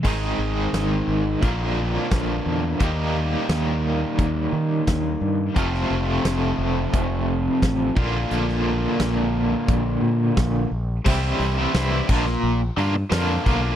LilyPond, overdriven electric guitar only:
\new Staff \with { instrumentName = "Overdriven electric guitar" } { \time 4/4 \key bes \lydian \tempo 4 = 87 <aes, ees aes c' ees' aes'>2 <bes, d f bes d' bes'>2 | <ees g bes ees' g'>1 | <f, c f a c' f'>2.~ <f, c f a c' f'>8 <bes, d bes d' f'>8~ | <bes, d bes d' f'>2.~ <bes, d bes d' f'>8 r8 |
<c e g c' e'>8. <g c' e'>16 <c e g c' e'>16 <g c' e'>16 <bes, d bes d' f'>8. r16 <d bes d' f'>8 <bes, d bes d' f'>8 <d bes d' f'>16 <bes d' f'>16 | }